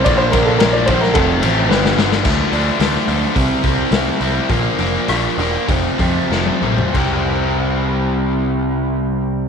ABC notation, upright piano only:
X:1
M:4/4
L:1/16
Q:1/4=104
K:Cmix
V:1 name="Upright piano"
d c B A B d c B A4 =B3 z | z16 | z16 | z16 |]